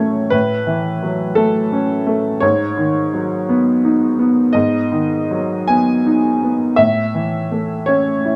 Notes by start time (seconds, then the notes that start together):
Already playing: A2 E3 F#3 A3 C#4 A4 C#5
0.30 A2 B4
0.67 E3
1.03 F#3
1.35 A3 A4
1.72 C#4
2.07 A3
2.40 G#2 C#5
2.77 D#3
3.14 F#3
3.49 B3
3.85 D#4
4.19 B3
4.53 G#2 D#5
4.92 D#3
5.31 F#3
5.68 B3 G#5
6.06 D#4
6.43 B3
6.76 A2 E5
7.14 E3
7.51 A3
7.86 C#4 C#5
8.25 E4